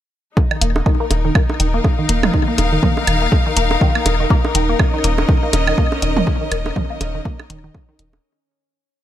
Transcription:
0.37 D#4, kick, low bongo
0.51 D#3, high woodblock
0.61 D#1 A#3, closed hi-hat
0.76 low bongo
0.86 D#3, kick
0.93 A#4
1.00 A#3
1.11 D#1, closed hi-hat, low bongo
1.25 D#3
1.35 A#3, kick, high woodblock
1.50 low bongo
1.60 D#1 D#3, closed hi-hat
1.74 A#3 F5
1.84 kick, low bongo
1.99 D#3
2.09 D#1 A#3, closed hi-hat
2.23 mid tom, low bongo, high woodblock
2.34 D#3, kick
2.48 A#3
2.58 D#1, closed hi-hat, low bongo
2.73 D#3
2.83 A#3, kick, mid tom
2.97 low bongo
3.07 D#1 D#3, closed hi-hat, high woodblock
3.22 A#3
3.32 kick, low bongo
3.46 D#3
3.57 D#1 A#3, closed hi-hat
3.71 low bongo
3.81 D#3, kick
3.95 A#3, high woodblock
4.06 D#1, closed hi-hat, low bongo
4.20 D#3
4.30 A#3 C#4 C#5, kick
4.45 low bongo
4.55 D#1 D#3, closed hi-hat
4.69 A#3
4.77 D#5, kick, low bongo, high woodblock
4.94 D#3
5.04 D#1 A#3, closed hi-hat
5.18 low bongo
5.29 D#3, kick
5.43 A#3
5.53 D#1, closed hi-hat, low bongo
5.67 D#3, high woodblock
5.78 A#3, kick
5.92 low bongo
6.02 D#1 D#3, closed hi-hat
6.17 A#3, mid tom
6.27 kick, low bongo
6.41 D#3
6.51 D#1 A#3, closed hi-hat, high woodblock
6.66 low bongo
6.76 D#3, kick, mid tom
6.90 A#3
7.01 D#1, closed hi-hat, low bongo
7.15 D#3
7.25 A#3, kick
7.40 low bongo, high woodblock
7.50 D#1 D#3, closed hi-hat
7.64 D#3
7.74 kick, low bongo
7.89 D#3
7.99 D#1 D#3, closed hi-hat
8.13 low bongo

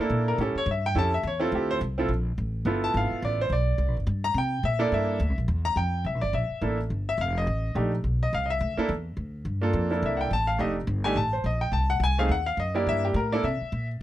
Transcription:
0.00 A#3 D4 E4 A4
0.10 A#2
0.28 A#4
0.38 A2 C#4 E4 G4 A4
0.55 C#5, muted upright bass stroke
0.66 G2
0.71 E5
0.86 G5
0.95 F2 C#4 E4 G4 A4 A5
1.14 E5
1.23 E2 C#5
1.40 C4 E4 F4 A4
1.52 D2 G4
1.71 C5
1.81 C2
1.98 C4 E4 F4 A4
2.09 A#1
2.38 A1
2.65 G1 B3 E4 F4 A4
2.84 A5
2.94 G#1 F5
3.11 muted upright bass stroke
3.22 A1 D5
3.41 C5
3.50 B1 D5
3.78 C2
3.88 A#1
3.97 G1
4.07 G2
4.24 A#5
4.34 C3 G5
4.63 A#2 E5
4.79 A#3 D4 E4 A4 D5
4.92 G2 E5
5.20 D2
5.29 C2
5.38 A#1
5.48 E2
5.65 A#5
5.76 F2 G5
6.05 C2 E5
6.14 A#1
6.21 G1 D5
6.33 A#1 E5
6.50 muted upright bass stroke
6.61 A1 A#3 D4 E4 A4
6.90 G1
7.09 E5
7.18 F1 F5
7.38 D#5
7.47 A1
7.75 A#1 A3 D4 D#4 G4
8.04 B1
8.23 D#5
8.33 C2 F5
8.46 D#5
8.50 E5
8.61 D2
8.77 A#3 D4 E4 A4, muted upright bass stroke
8.89 E2
9.17 D2
9.45 G2
9.61 A#3 D4 F4 A4
9.73 F2
9.90 A#3 D4 E4 A4
10.02 C2 E5
10.17 F#5 G5
10.31 A1 A5
10.47 F5
10.58 F1 A3 D4 D#4 G4 D#5
10.87 G1
11.04 A3 D4 D#4 G4 G#5
11.16 A1 A5
11.33 C5
11.44 A#1 D#5
11.61 G5
11.72 C2 A5
11.90 F#5
12.00 C2 G#5
12.18 A3 C4 D#4 G#4 F5
12.29 D#2 F#5
12.46 F5
12.57 F#2 D#5
12.74 A#3 D4 E4 G4 D5
12.87 G2 E5
13.05 G4
13.14 A2 A#4
13.32 A#3 D4 E4 A4 D5
13.44 C3 E5
13.61 muted upright bass stroke
13.72 A#2

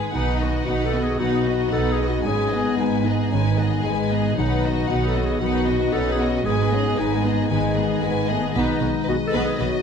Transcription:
Already playing: G#2 D#3 G#3 B3 D#4 G#4 B4 D#5
0.12 B1 B2 D#4 F#5
0.17 B4
0.38 B3 D#5
0.42 B3 F#4
0.65 B1 B2 D#4 F#4 B4 D#5 F#5
0.85 A4
0.93 B3 D#4 F#4 D#5
1.03 G#4
1.19 B1 B2 F#3 B3 D#4 F#4 B4 F#5
1.43 B3 D#4 D#5
1.51 F#4
1.69 B1 B2 A4 D#5 F#5
1.75 D#4 B4
1.92 G#4
1.96 D#4 D#5
2.01 B3 F#4
2.09 F#4
2.24 G#1 G#2 G#3 C#4 G#4 G#5
2.31 B4
2.51 B3 D#5
2.56 G#4
2.77 G#1 G#2 G#3 D#4 D#5 G#5
2.83 B4
3.04 B3 D#4 D#5
3.10 G#4
3.30 G#1 G#2 D#3 G#3 C#4 G#5
3.37 B4
3.58 B3 D#5
3.63 G#4
3.82 G#1 G#2 G#3 D#5 G#5
3.88 B4
4.10 B3 D#4 D#5
4.15 G#4
4.36 B1 B2 F#3 D#4 F#5
4.41 B4
4.63 B3 F#4 D#5
4.88 B1 B2 D#4 F#4 D#5 F#5
4.93 B4
5.07 A4
5.15 B3 D#4 F#4 D#5
5.24 G#4
5.40 B1 B2 D#3 F#3 D#4 F#4 B4 F#5
5.66 B3 D#4 F#4 D#5
5.92 B1 B2 C#4 D#4 A4 B4 D#5 F#5
6.11 G#4
6.19 B3 D#4 F#4 D#5
6.30 F#4
6.45 G#1 G#2 G#3 B3 G#4 B4 G#5
6.71 B3 C#4 G#4 D#5
6.97 G#1 G#2 G#3 B3 D#4 B4 D#5 G#5
7.24 B3 D#4 G#4 D#5
7.48 G#1 G#2 D#3 G#3 B4 G#5
7.75 B3 G#4 D#5
8.02 G#1 G#2 G#3 B3 B4 D#5 G#5
8.27 A3 B3 D#4 G#4 D#5
8.54 B1 B2 G#3 B3 D#4 B4 D#5
8.79 B1 B2 B3 B4
9.04 B4
9.08 B1 B2 B3 F#4 D#5
9.27 A4
9.32 B1 B2 B3 D#4 B4
9.46 G#4
9.59 B1 B2 F#3 B3 F#4 B4

